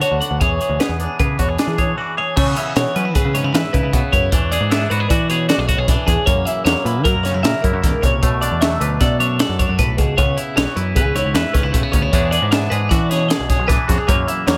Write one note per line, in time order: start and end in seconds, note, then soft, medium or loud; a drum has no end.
0.00 0.39 D3 medium
0.00 0.38 F#3 medium
0.00 0.79 B3 medium
0.00 0.21 D4 medium
0.00 0.41 F#4 medium
0.00 0.20 C#5 medium
0.00 closed hi-hat medium
0.11 0.20 D2 medium
0.21 0.39 D4 medium
0.21 0.40 F#5 medium
0.21 closed hi-hat medium
0.31 0.39 D2 medium
0.41 0.58 E2 loud
0.41 1.96 E3 medium
0.41 0.60 G#4 medium
0.41 0.80 C#5 medium
0.41 kick medium
0.41 closed hi-hat medium
0.61 0.79 G#4 medium
0.61 closed hi-hat medium
0.69 0.78 D2 medium
0.80 2.34 B3 medium
0.80 1.19 G#4 medium
0.80 0.99 B4 medium
0.80 snare medium
0.80 closed hi-hat medium
0.89 1.06 E2 medium
0.99 1.58 D4 medium
0.99 1.19 G#4 medium
0.99 closed hi-hat medium
1.19 1.36 C#3 medium
1.19 1.39 G#4 medium
1.19 1.39 B4 medium
1.19 kick medium
1.19 closed hi-hat medium
1.39 1.56 E2 medium
1.39 1.98 B2 medium
1.39 1.49 F#4 medium
1.39 1.58 C#5 medium
1.39 kick medium
1.39 closed hi-hat medium
1.49 1.77 G#4 medium
1.58 2.35 D4 medium
1.58 1.78 G#4 medium
1.58 snare loud
1.58 closed hi-hat medium
1.67 1.93 E3 medium
1.78 1.97 G#4 medium
1.78 1.98 C#5 medium
1.78 kick medium
1.78 closed hi-hat medium
1.97 2.74 E3 medium
1.97 2.17 F#4 medium
1.97 2.17 D5 medium
2.17 2.34 G#4 medium
2.17 2.35 C#5 medium
2.36 2.75 C#3 medium
2.36 2.53 C#3 loud
2.36 2.47 A3 medium
2.36 2.57 C#5 medium
2.36 kick loud
2.36 crash loud
2.47 2.75 B3 medium
2.56 2.95 E4 medium
2.56 2.76 E5 medium
2.56 closed hi-hat medium
2.76 2.84 B2 medium
2.76 4.32 E3 medium
2.76 3.92 B3 medium
2.76 2.96 C#5 medium
2.76 snare loud
2.76 closed hi-hat medium
2.95 3.15 F#3 medium
2.95 3.05 C#4 medium
2.95 3.15 B4 medium
2.95 closed hi-hat medium
3.05 3.34 E4 medium
3.15 3.23 C#3 medium
3.15 3.35 G#4 medium
3.15 3.53 B4 medium
3.15 kick medium
3.15 closed hi-hat medium
3.25 3.41 C#3 medium
3.34 3.93 G#2 medium
3.34 3.44 C#4 medium
3.34 3.54 C#5 medium
3.34 closed hi-hat medium
3.44 3.52 C#3 medium
3.44 3.73 E4 medium
3.54 3.62 E3 loud
3.54 4.30 B4 medium
3.54 3.73 E5 medium
3.54 snare loud
3.54 closed hi-hat medium
3.73 3.82 C#3 medium
3.73 4.13 E4 medium
3.73 4.12 B4 medium
3.73 kick medium
3.73 closed hi-hat medium
3.83 3.91 C#3 medium
3.93 4.01 B2 medium
3.93 4.29 C#3 medium
3.93 4.30 B3 medium
3.93 kick loud
3.93 closed hi-hat medium
4.12 4.29 F#2 medium
4.12 4.32 E4 medium
4.12 4.51 C#5 medium
4.12 kick medium
4.12 closed hi-hat medium
4.32 4.57 E2 loud
4.32 5.88 E3 medium
4.32 4.70 D4 medium
4.32 kick loud
4.32 closed hi-hat medium
4.51 4.91 G#4 medium
4.51 4.70 D5 medium
4.51 closed hi-hat medium
4.60 4.86 G#2 medium
4.70 6.24 B3 medium
4.70 5.88 D4 medium
4.70 4.90 E5 medium
4.70 snare loud
4.70 closed hi-hat medium
4.90 5.07 G#2 medium
4.90 5.00 F#4 medium
4.90 5.09 B4 medium
4.90 closed hi-hat medium
5.00 5.10 G#4 medium
5.09 5.52 E3 loud
5.09 5.30 F#4 medium
5.09 5.29 D5 medium
5.09 kick medium
5.09 closed hi-hat medium
5.29 5.88 B2 medium
5.29 5.48 G#4 medium
5.29 5.48 C#5 medium
5.29 closed hi-hat medium
5.49 5.59 F#4 medium
5.49 5.67 D5 medium
5.49 snare loud
5.49 closed hi-hat medium
5.58 5.75 B1 medium
5.58 5.68 G#4 medium
5.68 5.78 F#4 medium
5.68 5.87 C#5 medium
5.68 kick medium
5.68 closed hi-hat medium
5.78 5.95 B1 medium
5.78 6.07 G#4 medium
5.87 6.66 E3 medium
5.87 6.25 D4 medium
5.87 6.07 B4 medium
5.87 kick loud
5.87 snare soft
5.87 closed hi-hat medium
6.07 6.16 E2 medium
6.07 6.26 G#4 medium
6.07 6.25 G#4 medium
6.07 kick medium
6.07 closed hi-hat medium
6.26 6.44 F#2 medium
6.26 7.83 F#2 medium
6.26 6.66 A#3 medium
6.26 6.45 C#5 medium
6.26 kick loud
6.26 closed hi-hat medium
6.45 6.86 E4 medium
6.45 6.64 E5 medium
6.45 closed hi-hat medium
6.65 6.74 E2 medium
6.65 8.20 F#3 medium
6.65 8.20 A#3 medium
6.65 6.84 C#5 medium
6.65 snare loud
6.65 closed hi-hat medium
6.84 7.05 A#2 medium
6.84 7.25 E4 medium
6.84 7.04 B4 medium
6.84 closed hi-hat medium
7.04 7.13 F#3 medium
7.04 7.23 A#4 medium
7.04 7.44 A#4 medium
7.04 kick loud
7.04 closed hi-hat medium
7.15 7.32 F#2 medium
7.23 8.20 C#3 medium
7.23 7.34 C#4 medium
7.23 7.43 C#5 medium
7.23 snare soft
7.23 closed hi-hat medium
7.34 7.43 F#2 medium
7.34 7.63 E4 medium
7.43 7.52 A#2 medium
7.43 8.20 A#4 medium
7.43 7.63 E5 medium
7.43 snare loud
7.43 closed hi-hat medium
7.62 7.72 F#2 medium
7.62 8.20 E4 medium
7.62 8.02 A#4 medium
7.62 kick medium
7.62 closed hi-hat medium
7.73 7.82 F#2 medium
7.83 7.92 E2 medium
7.83 8.03 G#2 medium
7.83 kick loud
7.83 snare soft
7.83 closed hi-hat medium
8.02 8.19 C2 medium
8.02 8.22 A#2 medium
8.02 8.41 C#5 medium
8.02 kick medium
8.02 closed hi-hat medium
8.22 8.47 B1 medium
8.22 9.20 B2 medium
8.22 8.61 A3 medium
8.22 kick loud
8.22 closed hi-hat medium
8.41 8.80 D4 medium
8.41 8.61 D5 medium
8.41 closed hi-hat medium
8.51 8.76 E2 medium
8.61 10.15 F#3 medium
8.61 10.17 A3 medium
8.61 8.81 E5 medium
8.61 snare loud
8.61 closed hi-hat medium
8.80 8.97 D2 medium
8.80 9.19 D4 medium
8.80 9.00 B4 medium
8.80 closed hi-hat medium
9.01 9.42 B2 loud
9.01 9.39 A4 medium
9.01 9.19 D5 medium
9.01 kick loud
9.01 snare soft
9.01 closed hi-hat medium
9.19 9.78 F#2 medium
9.19 9.58 D4 medium
9.19 9.39 C#5 medium
9.19 closed hi-hat medium
9.39 10.15 A4 medium
9.39 9.59 D5 medium
9.39 snare loud
9.39 closed hi-hat medium
9.49 9.66 F#2 medium
9.59 10.15 D4 medium
9.59 9.78 C#5 medium
9.59 kick medium
9.59 closed hi-hat medium
9.69 9.77 F#2 medium
9.78 9.96 B1 medium
9.78 9.98 A2 medium
9.78 9.98 B4 medium
9.78 kick loud
9.78 closed hi-hat medium
9.98 10.16 C#2 medium
9.98 10.17 B2 medium
9.98 10.17 G#4 medium
9.98 kick medium
9.98 closed hi-hat medium
10.17 10.34 C#2 loud
10.17 10.56 C#3 medium
10.17 10.56 B3 medium
10.17 10.38 C#5 medium
10.17 kick loud
10.17 closed hi-hat medium
10.37 10.76 E4 medium
10.37 10.56 E5 medium
10.37 closed hi-hat medium
10.56 10.65 B1 medium
10.56 12.12 E3 medium
10.56 11.72 B3 medium
10.56 10.76 C#5 medium
10.56 snare loud
10.56 closed hi-hat medium
10.76 10.97 F#2 medium
10.76 11.15 E4 medium
10.76 10.95 B4 medium
10.76 closed hi-hat medium
10.95 11.04 C#3 medium
10.95 11.15 G#4 medium
10.95 11.34 B4 medium
10.95 kick loud
10.95 closed hi-hat medium
11.05 11.22 C#2 medium
11.15 11.74 G#2 medium
11.15 11.53 E4 medium
11.15 11.34 C#5 medium
11.15 closed hi-hat medium
11.25 11.33 C#2 medium
11.34 11.43 E2 loud
11.34 12.10 B4 medium
11.34 11.54 E5 medium
11.34 snare loud
11.34 closed hi-hat loud
11.53 11.63 C#2 medium
11.53 11.63 C#4 medium
11.53 11.93 B4 medium
11.53 kick medium
11.53 snare soft
11.53 closed hi-hat medium
11.63 11.72 C#2 medium
11.63 11.92 E4 medium
11.72 11.82 B1 medium
11.72 12.10 C#3 medium
11.72 11.83 A3 medium
11.72 kick loud
11.72 closed hi-hat medium
11.83 12.12 B3 soft
11.92 12.10 D2 medium
11.92 12.02 C#4 medium
11.92 12.31 C#5 medium
11.92 kick medium
11.92 closed hi-hat medium
12.02 12.12 E4 soft
12.12 12.38 E2 loud
12.12 13.67 E3 medium
12.12 12.50 B3 medium
12.12 12.51 D4 medium
12.12 12.31 G#4 medium
12.12 kick loud
12.12 closed hi-hat medium
12.31 12.70 G#4 medium
12.31 12.51 D5 medium
12.31 closed hi-hat medium
12.42 12.67 G#2 medium
12.51 14.05 B3 medium
12.51 13.68 D4 medium
12.51 12.71 E5 medium
12.51 snare loud
12.51 closed hi-hat medium
12.70 12.88 G#2 medium
12.70 12.91 G#4 medium
12.70 12.90 B4 medium
12.70 closed hi-hat medium
12.89 13.32 E3 loud
12.89 13.10 F#4 medium
12.89 13.09 D5 medium
12.89 kick medium
12.89 snare soft
12.89 closed hi-hat medium
13.09 13.69 B2 medium
13.09 13.29 G#4 medium
13.09 13.29 C#5 medium
13.09 snare soft
13.09 closed hi-hat medium
13.29 13.49 G#4 medium
13.29 13.49 D5 medium
13.29 snare loud
13.29 closed hi-hat medium
13.39 13.56 B1 medium
13.49 13.88 G#4 medium
13.49 13.69 C#5 medium
13.49 kick medium
13.49 snare soft
13.49 closed hi-hat medium
13.59 13.76 B1 medium
13.68 14.47 E3 medium
13.68 14.05 D4 medium
13.68 13.88 B4 medium
13.68 kick loud
13.68 snare soft
13.68 closed hi-hat medium
13.88 13.97 F2 medium
13.88 13.98 F#4 medium
13.88 14.08 G#4 medium
13.88 kick medium
13.88 snare soft
13.88 closed hi-hat medium
13.98 14.08 G#4 medium
14.07 14.57 F#2 medium
14.07 14.25 F#2 loud
14.07 14.46 A#3 medium
14.07 14.28 C#5 medium
14.07 kick loud
14.07 closed hi-hat medium
14.28 14.57 E4 medium
14.28 14.47 E5 medium
14.28 closed hi-hat medium
14.47 14.55 E2 medium
14.47 14.57 F#3 medium
14.47 14.57 A#3 medium
14.47 14.57 C#5 medium
14.47 snare loud
14.47 closed hi-hat medium